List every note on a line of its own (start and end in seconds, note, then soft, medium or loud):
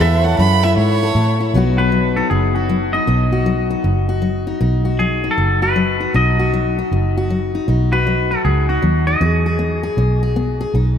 0.00 0.38 E2 loud
0.00 0.36 A2 medium
0.00 0.63 E4 medium
0.00 1.53 A4 medium
0.00 0.27 B4 medium
0.00 0.26 E5 medium
0.00 1.54 E5 medium
0.24 1.01 A4 medium
0.24 1.53 C#5 medium
0.24 0.38 F#5 loud
0.38 0.76 F#2 loud
0.38 0.75 E3 medium
0.38 0.65 B5 loud
0.63 1.39 E4 medium
0.63 0.76 E5 medium
0.77 1.14 G#2 loud
0.77 1.52 C#5 loud
1.03 1.53 A4 medium
1.15 1.53 A2 loud
1.15 1.51 E3 medium
1.40 1.53 E4 medium
1.54 2.21 B1 medium
1.54 1.90 B2 medium
1.54 1.92 F#3 medium
1.54 5.05 B3 medium
1.54 2.16 D#4 medium
1.54 1.78 F#4 medium
1.78 3.32 F#4 medium
1.78 2.18 B4 medium
1.92 2.28 F#3 medium
2.16 2.55 D#4 medium
2.16 2.30 A4 medium
2.30 2.98 F#1 medium
2.30 2.66 F#2 medium
2.30 2.55 G#4 medium
2.55 2.94 D#4 medium
2.55 2.94 F#4 medium
2.69 3.05 F#3 medium
2.93 3.08 D#4 medium
2.93 3.66 D#5 loud
3.07 3.75 B1 medium
3.07 3.43 B2 medium
3.07 3.70 D#4 medium
3.32 4.08 F#4 medium
3.46 3.81 F#3 medium
3.71 4.47 D#4 medium
3.84 4.51 F#1 medium
3.84 4.20 F#2 medium
4.09 4.85 F#4 medium
4.22 4.58 F#3 medium
4.47 4.61 D#4 medium
4.61 5.28 B1 medium
4.61 4.96 B2 medium
4.61 5.23 D#4 medium
4.85 5.62 F#4 medium
4.99 5.35 F#3 medium
4.99 5.31 G#4 medium
5.24 6.00 D#4 medium
5.31 5.62 A4 medium
5.38 6.05 F#1 medium
5.38 5.73 F#2 medium
5.62 6.39 F#4 medium
5.62 6.11 B4 medium
5.76 6.11 F#3 medium
6.01 6.15 D#4 medium
6.14 6.82 B1 medium
6.14 6.50 B2 medium
6.14 6.78 D#4 medium
6.14 6.51 D#5 medium
6.39 7.16 F#4 medium
6.54 6.89 F#3 medium
6.79 7.54 D#4 medium
6.91 7.58 F#1 medium
6.91 7.27 F#2 medium
7.17 7.91 F#4 medium
7.30 7.65 F#3 medium
7.55 7.67 D#4 medium
7.68 8.35 B1 medium
7.68 8.03 B2 medium
7.68 8.30 D#4 medium
7.92 9.21 F#4 medium
7.92 8.32 B4 medium
8.07 8.42 F#3 medium
8.31 8.68 D#4 medium
8.31 8.44 A4 medium
8.45 8.77 C#2 medium
8.45 8.80 F#2 medium
8.45 8.67 G#4 medium
8.69 9.06 D#4 medium
8.69 9.04 F#4 medium
8.82 9.15 D#2 medium
8.82 9.18 F#3 medium
9.07 9.20 D#4 medium
9.07 9.79 D#5 medium
9.21 9.88 E2 medium
9.21 9.56 E3 medium
9.21 9.45 G#4 medium
9.46 9.82 G#4 medium
9.59 9.95 B3 medium
9.83 10.22 G#4 medium
9.97 10.64 B1 medium
9.97 10.33 B2 medium
10.23 10.59 G#4 medium
10.36 10.71 B3 medium
10.61 10.73 G#4 medium
10.74 10.98 B1 medium
10.74 10.98 B2 medium
10.74 10.98 D#4 medium